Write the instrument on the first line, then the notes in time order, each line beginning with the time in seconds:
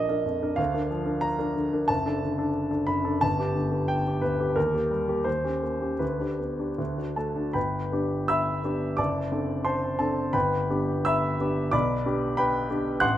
grand piano
Already playing: F3 D4 A#4 D5 D#5
0.08 D4 A#4
0.26 F2
0.42 D4 A#4
0.56 D2 F5
0.74 D4 A#4
0.91 F3
1.06 D4 A#4
1.21 A#5
1.39 D4 A#4
1.56 D3
1.73 D4 A#4
1.88 F#1 A5
2.06 D4 A4
2.23 D3
2.38 D4 A4
2.71 D4 A4
2.87 F#2 B5
3.04 D4 A4
3.21 G1 A5
3.39 B3 G4
3.54 D3
3.72 B3 G4
3.88 G5
4.07 B3 G4
4.22 D2 B4
4.40 B3 G4
4.56 D#2 A#4
4.74 A#3 G4
4.91 G3
5.08 A#3 G4
5.24 D#2 C5
5.44 C#4 G4
5.62 A#3
5.81 C#4 G4
5.99 D2 B4
6.20 D4 G4
6.40 B3
6.59 D4 G4
6.78 D2
6.97 D4 F#4
7.16 A3 A4 A5
7.36 D4 F#4
7.53 G1 B4 G5 B5
7.92 B3 D4 G4
8.28 E5 B5 E6
8.64 B3 D4 G4
8.97 F#1 D5 A5 D6
9.32 C4 D4 A4
9.65 C5 A5 C6
9.99 C4 D4 A4 A5
10.33 G1 B4 G5 B5
10.70 B3 D4 G4
11.05 E5 B5 E6
11.40 B3 D4 G4
11.71 B1 D5 B5 D6
12.05 B3 D4 G4
12.37 B4 G5 B5
12.70 B3 D4 G4
13.00 A1 F#5 C6 F#6